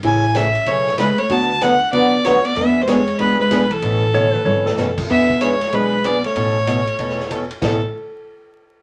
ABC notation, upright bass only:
X:1
M:4/4
L:1/8
Q:"Swing" 1/4=190
K:A
V:1 name="Upright bass" clef=bass
A,,,4 B,,,2 C,,2 | D,,4 C,,2 D,,2 | E,,4 C,,2 B,,,2 | A,,,4 G,,,2 F,,,2 |
E,,4 B,,,4 | A,,,4 E,,,4 | A,,, z6 z |]